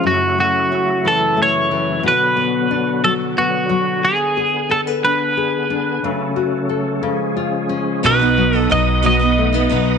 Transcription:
Already playing: C#3 F3 G#3 C#4
0.04 F#2 F#3 A3 E4 F#4
0.38 A3 F#4
0.72 C#4
1.05 E3 A4
1.37 A3
1.43 C#5
1.71 E3
2.03 B2 D3 B3 F#4
2.08 B4
2.37 B3
2.71 D4
3.04 F#3 A4
3.37 B3 F#4
3.69 F#3
4.03 G#4 G#5
4.37 G#4
4.70 A4
4.87 B4
5.04 D4 B4
5.37 G#4
5.70 D4
6.02 C#3 F#3 A3 C#4 A4
6.36 F#4
6.69 A4
7.03 C#3 F3 G#3 G#4
7.37 F4
7.69 C#4
8.03 B1 B2 F#3 B3 D#4 B4 D#5 F#5 D#6
8.19 B3 D#4 B4
8.37 F#3
8.53 B3 D#4 B4
8.57 A4
8.70 B1 F#3 B3 D#4 B4 D#5
9.03 B2 F#3 B3 D#4 B4 D#5
9.19 B3 D#4 B4
9.38 A3
9.53 B3 D#4 B4
9.69 B1 F#3 B3 D#4 B4

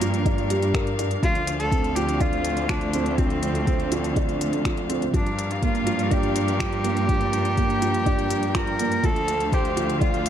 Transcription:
Already playing: G2 F3 A#3 D4 G4 A#4 F5
0.01 F3, closed hi-hat
0.14 closed hi-hat
0.25 D4, kick, closed hi-hat
0.38 closed hi-hat
0.50 G3, closed hi-hat
0.62 closed hi-hat
0.74 A#4, finger snap, kick, closed hi-hat
0.87 closed hi-hat
0.99 D4, closed hi-hat
1.11 closed hi-hat
1.22 D2 F3 F4 A4 C5, kick, closed hi-hat
1.35 closed hi-hat
1.47 closed hi-hat
1.59 A4, closed hi-hat
1.72 C4, kick, closed hi-hat
1.84 closed hi-hat
1.95 F3 G4, closed hi-hat
2.09 closed hi-hat
2.20 D4 F4, kick, closed hi-hat
2.33 closed hi-hat
2.45 closed hi-hat
2.57 closed hi-hat
2.69 F3 D4, finger snap, kick, closed hi-hat
2.81 closed hi-hat
2.93 C4, closed hi-hat
3.06 closed hi-hat
3.18 F3 C4, kick, closed hi-hat
3.30 closed hi-hat
3.43 closed hi-hat
3.55 closed hi-hat
3.67 C4, kick, closed hi-hat
3.80 closed hi-hat
3.92 F3, closed hi-hat
4.04 closed hi-hat
4.16 D4, kick, closed hi-hat
4.29 closed hi-hat
4.41 closed hi-hat
4.53 closed hi-hat
4.65 F3, finger snap, kick, closed hi-hat
4.77 closed hi-hat
4.90 C4, closed hi-hat
5.02 closed hi-hat
5.13 G2 F3 D4 G4 A#4 F5, kick, closed hi-hat
5.26 closed hi-hat
5.39 closed hi-hat
5.51 F4, closed hi-hat
5.62 A#3 F4, kick, closed hi-hat
5.75 closed hi-hat
5.87 F3, closed hi-hat
5.99 closed hi-hat
6.11 D4 G4, kick, closed hi-hat
6.23 closed hi-hat
6.36 closed hi-hat
6.48 closed hi-hat
6.60 F3, finger snap, kick, closed hi-hat
6.72 closed hi-hat
6.84 A#3, closed hi-hat
6.97 closed hi-hat
7.08 F3 G5, kick, closed hi-hat
7.21 closed hi-hat
7.33 closed hi-hat
7.45 closed hi-hat
7.57 A#3, kick, closed hi-hat
7.70 closed hi-hat
7.82 F3, closed hi-hat
7.94 closed hi-hat
8.06 D4, kick, closed hi-hat
8.19 closed hi-hat
8.30 closed hi-hat
8.43 closed hi-hat
8.55 F3 A#4, finger snap, kick, closed hi-hat
8.67 closed hi-hat
8.79 A#3, closed hi-hat
8.92 closed hi-hat
9.04 D2 F3 D4 A4 C5 F5, kick, closed hi-hat
9.16 closed hi-hat
9.28 closed hi-hat
9.40 closed hi-hat
9.52 G4 C5, kick, closed hi-hat
9.65 closed hi-hat
9.77 F3, closed hi-hat
9.90 closed hi-hat
10.01 D4 F4, kick, closed hi-hat
10.14 closed hi-hat
10.26 closed hi-hat

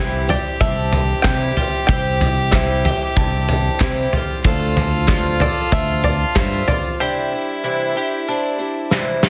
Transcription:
Already playing: C2 C3 E3 G3 C4 E4 G4 C5
0.28 G3 C4 E4 G4 C5 D5, floor tom, tambourine
0.60 C2 G3 C4 D4 E4 C5 E5, kick, floor tom
0.92 G3 C4 E4 C5, floor tom, tambourine
1.22 C3 E3 G3 C4 E4 C5 G5, kick, snare, clap, floor tom, tambourine
1.40 tambourine
1.57 G3 C4 E4 F4 C5, floor tom
1.72 tambourine
1.87 C2 C3 E3 G3 C4 E4 G4 C5 G5, kick, floor tom, tambourine
2.05 tambourine
2.20 G3 C4 E4 C5, floor tom, tambourine
2.37 tambourine
2.51 C3 E3 G3 C4 E4 C5 E5, kick, snare, clap, floor tom, tambourine
2.85 G3 C4 E4 G4 C5, floor tom, tambourine
3.17 C2 G3 C4 D4 E4 C5, kick, floor tom
3.48 G3 C4 E4 C5, floor tom, tambourine
3.80 C3 E3 G3 C4 E4 C5, kick, snare, clap, floor tom, tambourine
3.97 tambourine
4.13 G3 C4 E4 F4 C5, floor tom, tambourine
4.29 tambourine
4.44 D2 D3 A3 C4 F4 A4 C5, kick, floor tom, tambourine
4.61 tambourine
4.76 C4 F4 C5, floor tom, tambourine
4.93 tambourine
5.08 D3 A3 C4 F4 C5, kick, snare, clap, floor tom, tambourine
5.40 C4 F4 A4 C5 D5, floor tom, tambourine
5.72 D2 A3 C4 D4 F4 C5 E5, kick, floor tom
6.04 C4 F4 C5 D5, floor tom, tambourine
6.36 G2 D3 A3 C4 F4 C5 E5, kick, snare, clap, floor tom, tambourine
6.53 tambourine
6.68 C4 F4 C5 D5, floor tom, tambourine
6.85 tambourine
7.00 C3 E3 G3 D4 E4 G4 C5
7.32 G3 D4 E4 C5
7.63 C3 E3 G3 D4 E4 C5
7.95 G3 D4 E4 G4 C5
8.27 G3 D4 E4 C5
8.58 G3 D4 E4 C5
8.91 C3 E3 G3 D4 E4 C5, snare
9.23 D4 E4 F4 C5, snare

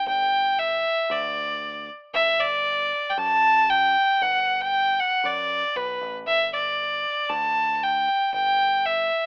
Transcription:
0.06 G1 G5
0.59 E5
1.10 D2 D5
2.14 G1 E5
2.40 D5
3.10 G5
3.18 F#2 A5
3.70 G5
4.21 G1 F#5
4.61 G5
5.00 F#5
5.24 F#2 D5
5.76 B1 B4
6.01 A1
6.27 G1 E5
6.53 D5
7.30 D2 A5
7.83 G5
8.33 G1 G5
8.86 E5

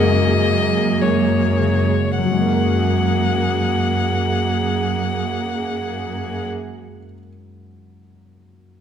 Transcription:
Already playing: F#2 C#3 G#3 A#3 F#4 G#4 A#4 D#5 F#5
0.21 G#4
0.47 F#5
0.74 G#4
1.01 G#3 A#3 F#4 C#5
1.30 G#3
1.59 C#3
1.88 G#3
2.17 F#2 A#3 G#4 F#5
2.25 F#3
2.31 G#3
2.38 A#3 F#4
2.45 F#4 A#4
2.52 A#4 F#5

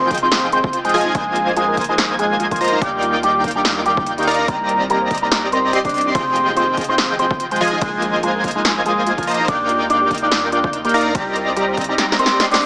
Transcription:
Already playing: F1 D#3 G#3 C4 F4 C5
0.01 C5
0.11 F3 F4 G#4 D#5 G5 G6, kick, closed hi-hat
0.15 closed hi-hat
0.18 closed hi-hat
0.22 C4 D#4 C5
0.32 D#4, snare, closed hi-hat
0.52 C4 G#4 C5, closed hi-hat
0.64 kick
0.73 F4, closed hi-hat
0.85 G#3 G#4 C5, closed hi-hat
0.89 closed hi-hat
0.94 F3 F4 G#4 D#5 G#5 G#6, closed hi-hat, open hi-hat
1.01 closed hi-hat
1.06 D#4
1.15 A#1 D#3 G#3 A#3 F4 G#4 C5 D#5 G#5 G#6, kick, closed hi-hat
1.36 G#4, closed hi-hat
1.56 G#3 F4 G#4, closed hi-hat
1.68 A#4
1.77 A#3 F4 C5 D#5 G#5 G#6, kick, closed hi-hat
1.81 closed hi-hat
1.84 closed hi-hat
1.89 G#3 D#4 G#4
1.98 D#4, snare, closed hi-hat
2.19 G#3 G#4, closed hi-hat
2.40 F4, closed hi-hat
2.51 F3 F4 A#4, kick, closed hi-hat
2.56 closed hi-hat
2.61 A#3 F4 C5 D#5 A#5 A#6, closed hi-hat, open hi-hat
2.68 closed hi-hat
2.72 D#4
2.81 D#2 G3 D#4 G4 A#4 D5 G5 G6, kick, closed hi-hat
3.02 F4, closed hi-hat
3.23 G3 D#4 G4, closed hi-hat
3.35 G4
3.44 D#4 A#4 D5 F5 G5 G6, kick, closed hi-hat
3.48 closed hi-hat
3.51 closed hi-hat
3.55 G3 D4 G4
3.65 D4, snare, closed hi-hat
3.86 G3 F4 G4, closed hi-hat
3.97 kick
4.07 D#4, closed hi-hat
4.18 D#3 D#4 G4, closed hi-hat
4.23 closed hi-hat
4.27 D#4 A#4 D5 F5 A#5 A#6, closed hi-hat, open hi-hat
4.34 closed hi-hat
4.39 D4
4.48 C2 A#3 C4 D#4 G4 A#4 A#6, kick, closed hi-hat
4.69 A#4, closed hi-hat
4.90 A#3 G4 A#4, closed hi-hat
5.01 C5
5.11 C4 G4 D5 D#5 A#5 A#6, kick, closed hi-hat
5.15 closed hi-hat
5.18 closed hi-hat
5.22 A#3 D#4 A#4
5.32 D#4, snare, closed hi-hat
5.52 C4 A#4 C5, closed hi-hat
5.73 C4 G4 D5 D#5 C6 C7, closed hi-hat
5.85 D4 C5 D5, kick, closed hi-hat
5.89 closed hi-hat
5.94 closed hi-hat, open hi-hat
6.01 closed hi-hat
6.06 D#4
6.15 F1 F3 G#3 C4 F4 G#4 C5 D#5 G5 G6, kick, closed hi-hat, ride
6.36 G#4, closed hi-hat
6.56 C4 F4 C5, closed hi-hat
6.68 C5
6.77 F3 F4 G#4 D#5 G5 G6, kick, closed hi-hat
6.81 closed hi-hat
6.84 closed hi-hat
6.89 C4 D#4 C5
6.98 D#4, snare, closed hi-hat
7.19 C4 G#4 C5, closed hi-hat
7.31 kick
7.40 F4, closed hi-hat
7.51 G#3 G#4 C5, closed hi-hat
7.56 closed hi-hat
7.61 F3 F4 G#4 D#5 G#5 G#6, closed hi-hat, open hi-hat
7.68 closed hi-hat
7.72 D#4
7.81 A#1 G#3 A#3 F4 G#4 D#5 G#5 G#6, kick, closed hi-hat, ride
8.02 G#4, closed hi-hat
8.23 G#3 F4 G#4, closed hi-hat
8.35 A#4
8.44 A#3 F4 C5 D#5 G#5 G#6, kick, closed hi-hat
8.48 closed hi-hat
8.51 closed hi-hat
8.55 G#3 D#4 G#4
8.65 D#4, snare, closed hi-hat
8.86 G#3 G#4, closed hi-hat
9.07 F4, closed hi-hat
9.18 F3 F4 A#4, kick, closed hi-hat
9.23 closed hi-hat
9.27 A#3 F4 C5 D#5 A#5 A#6, closed hi-hat, open hi-hat
9.34 closed hi-hat
9.39 D#4
9.48 D#2 G3 D4 D#4 A#4 D5 G6, kick, closed hi-hat, ride
9.69 F4, closed hi-hat
9.90 D4 D#4 D5, closed hi-hat
10.01 G4
10.11 D#4 A#4 D5 F5 G5 G6, kick, closed hi-hat
10.15 closed hi-hat
10.18 closed hi-hat
10.22 D4 D5
10.32 D4, snare, closed hi-hat
10.52 D4 F4 D5, closed hi-hat
10.64 kick
10.73 D#4, closed hi-hat
10.85 A#3 G4 A#4, closed hi-hat
10.89 closed hi-hat
10.94 D#4 A#4 D5 F5 A#5 A#6, closed hi-hat, open hi-hat
11.01 closed hi-hat
11.06 D4
11.15 C2 C3 G3 A#3 C4 D#4 G4 D5 D#5 A#5 A#6, kick, closed hi-hat, ride
11.36 A#4, closed hi-hat
11.56 G3 G4, closed hi-hat
11.68 C5
11.77 C4 G4 D5 D#5 A#5 A#6, kick, closed hi-hat
11.81 closed hi-hat
11.84 closed hi-hat
11.89 G3 D#4 G4
11.98 D#4, snare, closed hi-hat
12.12 snare
12.19 C4 A#4 C5, closed hi-hat
12.26 snare
12.40 C4 G4 D5 D#5 C6 C7, snare, closed hi-hat
12.51 D4 C5 D5, snare, closed hi-hat
12.56 closed hi-hat
12.61 open hi-hat

